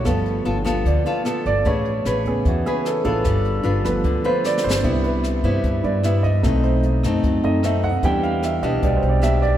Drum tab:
HH |x--x--x--x--x--x--x--x--|x--x--x--x--x--x--x--x--|x--x--x--x--x--x--------|x--x--x--x--x--x--x--x--|
SD |r--------r--------r-----|------r-----------r-----|r--------r--------o-o-o-|------r-----------r-----|
BD |o--------o--o--------o--|o--------o--o--------o--|o--------o--o-----------|o--------o--o--------o--|

HH |x--x--x--x--x--x--x--x--|x--x--x--x--x--x--x--x--|
SD |r--------r--------r-----|------r-----------r-----|
BD |o--------o--o--------o--|o--------o--o--------o--|